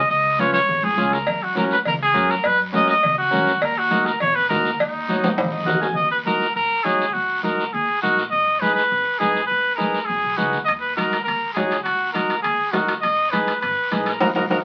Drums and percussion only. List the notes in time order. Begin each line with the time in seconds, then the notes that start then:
0.09 high conga, long guiro
0.39 high conga, short guiro
0.53 high conga, short guiro
0.69 high conga, low conga, long guiro
0.83 high conga
0.98 high conga, short guiro
1.13 short guiro
1.27 cowbell, high conga, low conga, long guiro
1.56 high conga, short guiro
1.71 short guiro
1.85 cowbell, high conga, low conga, long guiro
2.15 high conga, short guiro
2.30 short guiro
2.44 cowbell, high conga, long guiro
2.74 high conga, short guiro
2.88 short guiro
3.03 cowbell, high conga, low conga, long guiro
3.32 high conga, low conga, short guiro
3.47 short guiro
3.62 cowbell, high conga, long guiro
3.91 high conga, short guiro
4.06 short guiro
4.20 cowbell, high conga, low conga, long guiro
4.50 high conga, low conga, short guiro
4.65 short guiro
4.79 cowbell, high conga, long guiro
5.09 high conga, short guiro
5.23 high conga, high timbale, short guiro
5.38 cowbell, high timbale, long guiro
5.43 low conga
5.63 low conga
5.68 low timbale, short guiro
5.72 low conga
5.82 low timbale, short guiro
5.92 low conga
5.97 high conga, long guiro
6.26 high conga, short guiro
6.42 short guiro
6.56 high conga, long guiro
6.85 high conga, short guiro
7.01 short guiro
7.14 high conga, long guiro
7.44 high conga, short guiro
7.60 short guiro
7.74 high conga, long guiro
8.03 high conga, short guiro
8.18 short guiro
8.33 high conga, long guiro
8.62 high conga, short guiro
8.78 short guiro
8.91 high conga, long guiro
9.21 high conga, short guiro
9.36 short guiro
9.50 high conga, long guiro
9.79 high conga, short guiro
9.95 short guiro
10.09 high conga, long guiro
10.38 high conga, short guiro
10.53 short guiro
10.67 high conga, high timbale, long guiro
10.97 high conga, high timbale, short guiro
11.12 high timbale, short guiro
11.27 high conga, high timbale, long guiro
11.56 high conga, high timbale, low timbale, short guiro
11.71 high timbale, short guiro
11.85 high conga, high timbale, long guiro
12.15 high conga, high timbale, short guiro
12.30 high timbale, short guiro
12.44 high conga, high timbale, long guiro
12.73 high conga, high timbale, low timbale, short guiro
12.88 high timbale, short guiro
13.03 high conga, high timbale, long guiro
13.32 high conga, high timbale, short guiro
13.47 high timbale, short guiro
13.62 high conga, high timbale, long guiro
13.92 high conga, high timbale, short guiro
14.06 high timbale, short guiro
14.20 high conga, high timbale, long guiro
14.36 high conga, high timbale, long guiro
14.50 high conga, high timbale, long guiro